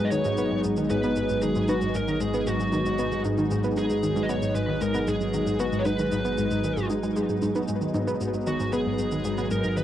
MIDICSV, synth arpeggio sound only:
0, 0, Header, 1, 2, 480
1, 0, Start_track
1, 0, Key_signature, 5, "minor"
1, 0, Tempo, 521739
1, 1311, Time_signature, 4, 2, 24, 8
1, 9050, End_track
2, 0, Start_track
2, 0, Title_t, "Synth arpeggio sound"
2, 0, Program_c, 0, 84
2, 0, Note_on_c, 0, 44, 73
2, 105, Note_off_c, 0, 44, 0
2, 111, Note_on_c, 0, 51, 70
2, 225, Note_off_c, 0, 51, 0
2, 231, Note_on_c, 0, 44, 94
2, 345, Note_off_c, 0, 44, 0
2, 351, Note_on_c, 0, 59, 99
2, 439, Note_off_c, 0, 59, 0
2, 471, Note_on_c, 0, 44, 72
2, 559, Note_off_c, 0, 44, 0
2, 592, Note_on_c, 0, 44, 72
2, 705, Note_off_c, 0, 44, 0
2, 712, Note_on_c, 0, 51, 74
2, 826, Note_off_c, 0, 51, 0
2, 832, Note_on_c, 0, 44, 97
2, 945, Note_off_c, 0, 44, 0
2, 952, Note_on_c, 0, 59, 96
2, 1039, Note_off_c, 0, 59, 0
2, 1073, Note_on_c, 0, 44, 73
2, 1160, Note_off_c, 0, 44, 0
2, 1194, Note_on_c, 0, 44, 73
2, 1306, Note_off_c, 0, 44, 0
2, 1315, Note_on_c, 0, 51, 79
2, 1427, Note_off_c, 0, 51, 0
2, 1434, Note_on_c, 0, 44, 96
2, 1547, Note_off_c, 0, 44, 0
2, 1554, Note_on_c, 0, 59, 98
2, 1640, Note_off_c, 0, 59, 0
2, 1674, Note_on_c, 0, 44, 74
2, 1760, Note_off_c, 0, 44, 0
2, 1792, Note_on_c, 0, 44, 80
2, 1905, Note_off_c, 0, 44, 0
2, 1914, Note_on_c, 0, 51, 73
2, 2026, Note_off_c, 0, 51, 0
2, 2033, Note_on_c, 0, 44, 96
2, 2146, Note_off_c, 0, 44, 0
2, 2153, Note_on_c, 0, 59, 95
2, 2240, Note_off_c, 0, 59, 0
2, 2272, Note_on_c, 0, 44, 79
2, 2359, Note_off_c, 0, 44, 0
2, 2394, Note_on_c, 0, 44, 73
2, 2506, Note_off_c, 0, 44, 0
2, 2515, Note_on_c, 0, 51, 72
2, 2627, Note_off_c, 0, 51, 0
2, 2633, Note_on_c, 0, 44, 99
2, 2746, Note_off_c, 0, 44, 0
2, 2753, Note_on_c, 0, 59, 96
2, 2840, Note_off_c, 0, 59, 0
2, 2873, Note_on_c, 0, 44, 75
2, 2960, Note_off_c, 0, 44, 0
2, 2991, Note_on_c, 0, 44, 75
2, 3105, Note_off_c, 0, 44, 0
2, 3112, Note_on_c, 0, 51, 72
2, 3225, Note_off_c, 0, 51, 0
2, 3231, Note_on_c, 0, 44, 97
2, 3345, Note_off_c, 0, 44, 0
2, 3351, Note_on_c, 0, 59, 96
2, 3439, Note_off_c, 0, 59, 0
2, 3470, Note_on_c, 0, 44, 73
2, 3558, Note_off_c, 0, 44, 0
2, 3590, Note_on_c, 0, 44, 72
2, 3704, Note_off_c, 0, 44, 0
2, 3709, Note_on_c, 0, 51, 78
2, 3824, Note_off_c, 0, 51, 0
2, 3829, Note_on_c, 0, 44, 98
2, 3944, Note_off_c, 0, 44, 0
2, 3950, Note_on_c, 0, 59, 96
2, 4038, Note_off_c, 0, 59, 0
2, 4069, Note_on_c, 0, 44, 73
2, 4158, Note_off_c, 0, 44, 0
2, 4188, Note_on_c, 0, 44, 78
2, 4303, Note_off_c, 0, 44, 0
2, 4308, Note_on_c, 0, 51, 72
2, 4424, Note_off_c, 0, 51, 0
2, 4431, Note_on_c, 0, 44, 96
2, 4545, Note_off_c, 0, 44, 0
2, 4549, Note_on_c, 0, 59, 99
2, 4638, Note_off_c, 0, 59, 0
2, 4671, Note_on_c, 0, 44, 82
2, 4759, Note_off_c, 0, 44, 0
2, 4791, Note_on_c, 0, 44, 75
2, 4905, Note_off_c, 0, 44, 0
2, 4911, Note_on_c, 0, 51, 76
2, 5025, Note_off_c, 0, 51, 0
2, 5028, Note_on_c, 0, 44, 95
2, 5144, Note_off_c, 0, 44, 0
2, 5150, Note_on_c, 0, 59, 97
2, 5238, Note_off_c, 0, 59, 0
2, 5268, Note_on_c, 0, 44, 74
2, 5357, Note_off_c, 0, 44, 0
2, 5389, Note_on_c, 0, 44, 72
2, 5504, Note_off_c, 0, 44, 0
2, 5509, Note_on_c, 0, 51, 73
2, 5624, Note_off_c, 0, 51, 0
2, 5630, Note_on_c, 0, 44, 97
2, 5744, Note_off_c, 0, 44, 0
2, 5749, Note_on_c, 0, 59, 97
2, 5838, Note_off_c, 0, 59, 0
2, 5869, Note_on_c, 0, 44, 72
2, 5958, Note_off_c, 0, 44, 0
2, 5988, Note_on_c, 0, 44, 73
2, 6103, Note_off_c, 0, 44, 0
2, 6110, Note_on_c, 0, 51, 80
2, 6224, Note_off_c, 0, 51, 0
2, 6228, Note_on_c, 0, 44, 94
2, 6343, Note_off_c, 0, 44, 0
2, 6349, Note_on_c, 0, 56, 74
2, 6403, Note_off_c, 0, 56, 0
2, 6470, Note_on_c, 0, 56, 74
2, 6579, Note_off_c, 0, 56, 0
2, 6590, Note_on_c, 0, 56, 80
2, 6704, Note_off_c, 0, 56, 0
2, 6710, Note_on_c, 0, 44, 74
2, 6798, Note_off_c, 0, 44, 0
2, 6830, Note_on_c, 0, 44, 75
2, 6918, Note_off_c, 0, 44, 0
2, 6951, Note_on_c, 0, 59, 96
2, 7065, Note_off_c, 0, 59, 0
2, 7069, Note_on_c, 0, 44, 79
2, 7184, Note_off_c, 0, 44, 0
2, 7188, Note_on_c, 0, 51, 72
2, 7304, Note_off_c, 0, 51, 0
2, 7308, Note_on_c, 0, 44, 101
2, 7423, Note_off_c, 0, 44, 0
2, 7429, Note_on_c, 0, 59, 96
2, 7518, Note_off_c, 0, 59, 0
2, 7551, Note_on_c, 0, 44, 78
2, 7639, Note_off_c, 0, 44, 0
2, 7673, Note_on_c, 0, 44, 72
2, 7786, Note_off_c, 0, 44, 0
2, 7792, Note_on_c, 0, 51, 72
2, 7906, Note_off_c, 0, 51, 0
2, 7912, Note_on_c, 0, 44, 95
2, 8025, Note_off_c, 0, 44, 0
2, 8032, Note_on_c, 0, 59, 99
2, 8119, Note_off_c, 0, 59, 0
2, 8151, Note_on_c, 0, 44, 71
2, 8239, Note_off_c, 0, 44, 0
2, 8271, Note_on_c, 0, 44, 72
2, 8385, Note_off_c, 0, 44, 0
2, 8393, Note_on_c, 0, 51, 75
2, 8506, Note_off_c, 0, 51, 0
2, 8510, Note_on_c, 0, 44, 97
2, 8624, Note_off_c, 0, 44, 0
2, 8630, Note_on_c, 0, 59, 101
2, 8718, Note_off_c, 0, 59, 0
2, 8751, Note_on_c, 0, 44, 75
2, 8839, Note_off_c, 0, 44, 0
2, 8872, Note_on_c, 0, 44, 73
2, 8985, Note_off_c, 0, 44, 0
2, 8990, Note_on_c, 0, 51, 79
2, 9050, Note_off_c, 0, 51, 0
2, 9050, End_track
0, 0, End_of_file